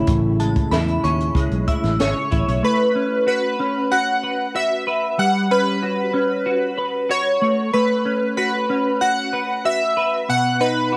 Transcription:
0.00 2.27 C#3 medium
0.00 0.39 G#3 medium
0.00 2.27 A3 medium
0.00 1.03 C#4 medium
0.00 2.28 C#4 medium
0.00 0.72 E4 medium
0.00 2.29 E4 medium
0.07 0.59 A1 medium
0.07 2.63 A2 medium
0.07 kick loud
0.07 closed hi-hat medium
0.40 1.34 G#3 soft
0.40 0.55 A5 medium
0.40 closed hi-hat medium
0.56 kick medium
0.56 closed hi-hat soft
0.71 0.97 E2 medium
0.71 1.67 E4 medium
0.71 1.02 B5 medium
0.71 snare medium
0.71 closed hi-hat medium
0.88 closed hi-hat soft
1.03 1.29 D#2 medium
1.03 1.99 C#4 medium
1.03 1.19 C#6 medium
1.03 closed hi-hat medium
1.20 closed hi-hat soft
1.35 1.48 C#2 medium
1.35 2.70 G#3 medium
1.35 kick medium
1.35 closed hi-hat medium
1.51 1.65 B1 medium
1.51 closed hi-hat soft
1.68 2.31 E4 medium
1.68 2.13 E6 medium
1.68 kick medium
1.68 closed hi-hat medium
1.83 1.97 A1 medium
1.83 snare soft
1.83 closed hi-hat soft
1.99 2.13 G#1 medium
1.99 2.95 C#4 medium
1.99 2.66 C#5 medium
1.99 snare loud
1.99 closed hi-hat medium
2.31 2.45 A1 medium
2.31 3.30 E4 medium
2.31 kick medium
2.31 closed hi-hat medium
2.48 2.61 B1 medium
2.48 closed hi-hat soft
2.63 5.18 A3 medium
2.63 3.27 B4 medium
2.95 3.59 C#4 medium
3.27 3.91 F#4 medium
3.27 3.93 B4 medium
3.60 5.51 C#4 medium
3.91 4.54 F#4 medium
3.91 4.57 F#5 loud
4.23 4.87 B4 medium
4.55 5.82 F#4 medium
4.55 5.21 E5 loud
4.87 5.54 B4 medium
5.19 7.41 G3 medium
5.19 5.52 F#5 loud
5.51 6.13 C#4 medium
5.51 7.15 B4 medium
5.83 6.46 F#4 medium
6.14 8.05 C#4 medium
6.46 7.09 F#4 medium
6.78 7.77 B4 medium
7.09 8.37 F#4 medium
7.09 7.76 C#5 loud
7.41 7.73 A3 medium
7.73 10.32 A3 medium
7.73 8.33 B4 loud
8.05 8.69 C#4 medium
8.37 9.01 F#4 medium
8.37 9.03 B4 medium
8.70 10.63 C#4 medium
9.01 9.64 F#4 medium
9.01 9.67 F#5 loud
9.33 9.96 B4 medium
9.65 10.60 F#4 medium
9.65 10.31 E5 loud
9.97 10.92 B4 medium
10.29 10.97 B2 medium
10.29 10.62 F#5 loud
10.60 10.97 D#4 medium
10.60 10.97 B4 medium
10.92 10.97 F#4 medium

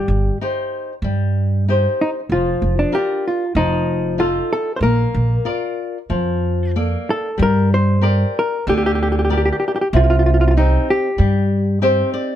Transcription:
0.00 0.39 G3 soft
0.00 0.37 G4 medium
0.08 0.28 G1 medium
0.41 0.92 D#4 soft
0.41 0.92 G4 soft
0.41 0.92 C5 soft
1.02 1.85 G2 medium
1.02 1.65 G3 medium
1.68 2.18 D#4 soft
1.68 2.19 G4 soft
1.68 2.19 C5 medium
2.01 2.09 D#4 medium
2.29 2.51 F1 medium
2.29 2.92 F3 medium
2.29 2.79 F4 medium
2.62 2.82 F1 medium
2.79 2.94 D4 medium
2.92 3.43 D4 soft
2.92 3.43 F4 soft
2.92 3.24 G4 medium
2.92 3.43 A#4 soft
3.28 3.55 F4 medium
3.55 4.38 F1 medium
3.55 4.18 F3 medium
3.55 4.16 D#4 medium
4.18 4.69 D#4 soft
4.18 4.70 F4 soft
4.18 4.50 F4 medium
4.18 4.70 A4 medium
4.53 4.75 A4 medium
4.76 4.82 C5 medium
4.81 5.03 A#1 medium
4.81 5.45 A#3 medium
4.81 6.71 A#4 medium
5.14 5.35 A#1 medium
5.45 5.97 F4 soft
5.45 5.97 A#4 soft
5.45 5.97 D5 soft
6.10 6.94 F2 medium
6.10 6.73 F3 medium
6.76 7.27 A#3 soft
6.76 7.27 A4 soft
6.76 7.28 D5 soft
7.10 7.39 A4 medium
7.38 8.22 G2 medium
7.38 8.01 G3 medium
7.43 7.72 A#4 medium
7.74 8.33 C5 medium
8.01 8.53 G4 soft
8.01 8.54 A#4 soft
8.01 8.54 D5 medium
8.39 8.67 A#4 medium
8.67 9.49 D2 medium
8.67 9.29 D3 medium
8.67 8.76 G4 medium
8.78 8.84 G4 medium
8.86 8.92 G4 medium
8.95 9.00 G4 medium
9.03 9.08 G4 medium
9.12 9.16 G4 medium
9.19 9.23 G4 medium
9.25 9.29 G4 soft
9.30 9.81 G4 soft
9.30 9.36 G4 soft
9.30 9.81 A#4 soft
9.30 9.81 D5 soft
9.38 9.43 G4 medium
9.46 9.51 G4 medium
9.53 9.58 G4 soft
9.60 9.66 G4 medium
9.68 9.73 G4 medium
9.76 9.80 G4 medium
9.81 9.87 G4 medium
9.93 10.75 C2 medium
9.93 10.55 C3 medium
9.93 10.02 F4 medium
10.04 10.09 F4 medium
10.10 10.17 F4 medium
10.19 10.25 F4 medium
10.26 10.32 F4 medium
10.34 10.40 F4 medium
10.41 10.47 F4 medium
10.48 10.50 F4 medium
10.48 10.57 F4 medium
10.57 11.07 C4 soft
10.57 11.07 D#4 soft
10.57 10.87 D#4 medium
10.57 11.07 G4 medium
10.90 11.79 G4 medium
11.18 12.00 G2 medium
11.18 11.79 G3 medium
11.82 12.32 C4 soft
11.82 12.32 D#4 soft
11.82 12.32 G4 medium
11.82 12.12 C5 medium
12.14 12.36 D5 medium

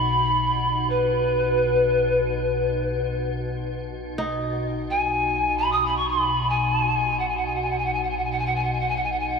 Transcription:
0.00 3.74 B1 medium
0.00 3.74 B2 medium
0.00 0.91 B5 medium
0.89 3.32 B4 medium
3.75 9.39 B1 medium
3.75 9.39 B2 medium
4.18 9.39 D#4 medium
4.90 5.59 G#5 medium
5.58 5.73 B5 medium
5.72 5.87 D#6 medium
5.85 5.98 B5 medium
5.97 6.10 C#6 medium
6.08 6.51 B5 medium
6.49 7.21 G#5 medium
7.19 7.30 F#5 soft
7.28 7.38 G#5 soft
7.37 7.47 F#5 soft
7.46 7.56 G#5 medium
7.55 7.63 F#5 medium
7.62 7.71 G#5 medium
7.70 7.79 F#5 medium
7.78 7.87 G#5 medium
7.85 7.94 F#5 medium
7.93 8.05 G#5 medium
8.03 8.11 F#5 medium
8.10 8.19 G#5 medium
8.17 8.25 F#5 medium
8.24 8.33 G#5 soft
8.31 8.40 F#5 medium
8.39 8.47 G#5 medium
8.46 8.57 F#5 medium
8.55 8.65 G#5 soft
8.63 8.74 F#5 soft
8.72 8.81 G#5 medium
8.80 8.90 F#5 medium
8.88 8.97 G#5 medium
8.96 9.05 F#5 medium
9.03 9.13 G#5 medium
9.12 9.21 F#5 soft
9.19 9.30 G#5 medium
9.29 9.39 F#5 medium

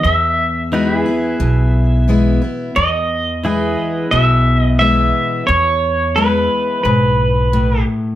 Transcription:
0.03 1.01 E2 medium
0.03 1.34 E2 medium
0.03 2.04 E5 medium
0.72 1.05 E3 soft
0.72 1.05 G#3 medium
0.72 1.06 B3 medium
0.72 0.93 D#4 medium
0.72 1.04 E4 medium
0.72 0.99 F#4 medium
0.72 2.76 B4 medium
0.93 2.75 E4 medium
0.99 2.75 G#4 medium
1.06 1.40 B3 soft
1.06 1.39 E4 medium
1.40 2.37 B1 medium
1.40 2.69 B2 medium
2.08 2.41 E3 medium
2.08 2.41 G#3 medium
2.08 2.42 B3 medium
2.08 2.40 E4 medium
2.42 2.76 B3 soft
2.42 2.75 E4 medium
2.76 4.05 E2 medium
2.76 3.74 E2 medium
2.76 4.11 D#5 medium
3.44 4.09 E3 medium
3.44 4.09 G#3 medium
3.44 4.10 B3 medium
3.44 8.15 E4 medium
3.44 4.10 E4 medium
3.44 8.15 G#4 medium
3.44 8.15 B4 medium
4.11 5.10 B1 medium
4.11 5.42 B2 medium
4.11 4.61 E5 medium
4.61 4.78 D#5 medium
4.79 5.45 E3 medium
4.79 5.45 G#3 medium
4.79 5.46 B3 medium
4.79 5.46 E4 medium
4.79 5.46 E5 loud
5.47 6.78 E2 medium
5.47 6.46 E2 medium
5.47 6.18 C#5 medium
6.16 6.81 E3 medium
6.16 6.82 G#3 medium
6.16 6.82 B3 medium
6.16 6.82 E4 medium
6.16 6.82 B4 medium
6.83 7.82 B1 medium
6.83 7.49 G#2 medium
6.83 7.82 B4 medium
7.53 8.15 A2 medium

